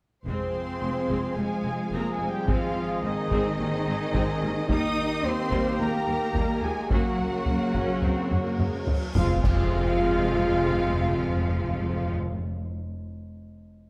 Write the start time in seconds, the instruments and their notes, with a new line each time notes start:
0.26 double bass section F1, timpani F2, trombone section F3 C4, viola section G#3 C4, string section G#3 G#4 C5 F5, french horn section C4, cello section C4, trumpet section G#4, violin section C5 C6, taiko
0.81 double bass section F1, viola section G#3 C4
1.09 double bass section F1, viola section G#3 C4, taiko
1.36 double bass section F1, viola section G3 A#3, french horn section G#3, cello section G#3, violin section G#4 G#5
1.65 double bass section F1, viola section G#3 C4
1.92 double bass section F1, viola section G#3 C4, french horn section A#3, cello section A#3, violin section A#4 A#5
2.10 french horn section G#3, cello section G#3, violin section G#4 G#5
2.20 double bass section F1, viola section G3 A#3
2.29 french horn section G3, cello section G3, violin section G4 G5
2.47 double bass section G#1, trombone section D#3, french horn section F3, cello section F3, viola section G#3 C4, violin section F4 F5, string section D#5, taiko
3.03 double bass section G#1, french horn section D#3, cello section D#3, viola section G#3 C4, violin section D#4 D#5
3.31 double bass section G#1, viola section G#3 C4, taiko
3.59 double bass section G#1, viola section G3 A#3
3.87 double bass section G#1, viola section G#3 C4
4.14 double bass section G#1, viola section G#3 C4, taiko
4.41 double bass section G#1, viola section G3 A#3
4.68 double bass section D#2, viola section G3 A#3, trombone section A#3, string section A#3 G4 A#4, french horn section D#4, cello section D#4, trumpet section G4, violin section D#5 D#6, taiko
5.23 double bass section D#2, viola section G3 A#3, french horn section C4, cello section C4, violin section C5 C6
5.51 double bass section D#2, viola section G3 A#3, taiko
5.78 double bass section D#2, viola section F3 G#3, french horn section A#3, cello section A#3, violin section A#4 A#5
6.06 double bass section D#2, viola section G3 A#3
6.34 double bass section D#2, viola section G3 A#3, taiko
6.62 double bass section D#2, viola section F3 G#3, french horn section G#3, cello section G#3, violin section G#4 G#5
6.90 double bass section F#2, trombone section C#3, viola section F#3 A#3, french horn section F#3, cello section F#3, string section F#4 C#5, trumpet section F#4, violin section F#4 F#5, taiko, cymbal swell
7.19 taiko low
7.46 double bass section F#2, viola section A#3, taiko low
7.74 double bass section F#2, viola section C#4, taiko
8.03 double bass section F#2, viola section C4, taiko low
8.31 double bass section F#2, viola section A#3, taiko low-mid
8.59 double bass section F#2, viola section G#3, taiko low-mid
8.87 double bass section F#2, viola section F#3, taiko low
9.16 double bass section F2, timpani F2, trombone section C3 G#3, cello section F3, viola section G#3 C4, string section C4 F4 G#4 F5, trumpet section F4, french horn section F4, violin section F4 F5, concert bass drum, snare, taiko, impact
9.24 timpani F2
9.44 double bass section F2, timpani F2, cello section F3, viola section G#3 C4, trumpet section F4, violin section F4 F5, concert bass drum, taiko, crash
9.51 timpani F2
9.57 timpani F2
9.64 timpani F2
9.71 timpani F2
9.78 timpani F2
9.85 timpani F2
9.92 timpani F2
9.98 timpani F2
10.04 timpani F2
10.11 timpani F2
10.18 timpani F2
10.25 timpani F2
10.32 timpani F2
10.39 timpani F2
10.45 timpani F2
10.52 timpani F2
10.58 timpani F2
10.65 timpani F2
10.72 timpani F2
10.79 timpani F2
10.87 timpani F2
10.94 timpani F2
11.01 timpani F2
11.08 timpani F2
11.15 timpani F2
11.22 timpani F2
11.28 timpani F2
11.35 timpani F2
11.43 timpani F2
11.49 timpani F2
11.57 timpani F2
11.64 timpani F2
11.70 timpani F2
11.76 timpani F2
11.83 timpani F2
11.90 timpani F2
11.96 timpani F2
12.03 timpani F2
12.09 timpani F2
12.16 timpani F2
12.22 timpani F2
12.29 timpani F2
12.36 timpani F2